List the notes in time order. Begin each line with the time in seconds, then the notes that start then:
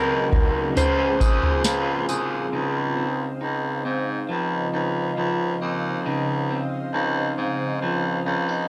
Already playing: C#2 C#3 F#3 C4 D#4 G#4 A#4 D#5 F#5 C6
0.32 C#2 D#4, kick, floor tom
0.75 C#2 C#3 G#3 C4 F4 G#4 C5 F5, floor tom, tambourine
1.18 D#2 F4 G#4, kick, tambourine
1.24 C4
1.43 floor tom
1.64 C#2 F4, snare, tambourine
2.08 D#2 G#4, tambourine
2.52 C#2 C#3 D#4 C5 D#5 F5
2.97 C4
3.41 C#2 D#4
3.85 G#2 C4
4.29 C#2 F3
4.73 C#2 D#4
5.17 C#2 F3
5.61 D#2 C4
6.05 C#2 C#3 D#4
6.50 C4
6.93 C#2 D#4
7.37 G#2 C4
7.81 C#2 F3
8.26 C#2 C#4
8.49 D#4